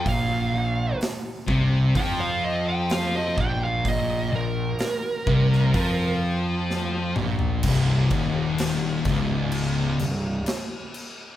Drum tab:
CC |----------------|----------------|x-x-x-x-x-x-x-x-|
HH |o---o---o---o---|o---o---o-------|----------------|
SD |----o-------o---|----o--o----o---|----o-o-----o---|
T2 |----------------|--------------o-|----------------|
FT |----------------|---------------o|----------------|
BD |o-----o-o-----o-|o-----o-o-------|o-o---o---------|